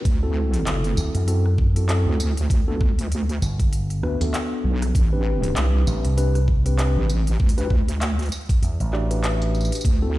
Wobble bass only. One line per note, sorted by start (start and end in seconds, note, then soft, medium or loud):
0.05 0.64 D2 loud
0.66 0.95 F#1 loud
2.06 2.48 D2 loud
2.50 3.40 D2 loud
4.64 4.93 B1 loud
4.95 5.54 A1 loud
5.56 5.85 C2 loud
6.96 7.38 A1 loud
7.40 8.30 D2 loud
9.85 10.19 D2 loud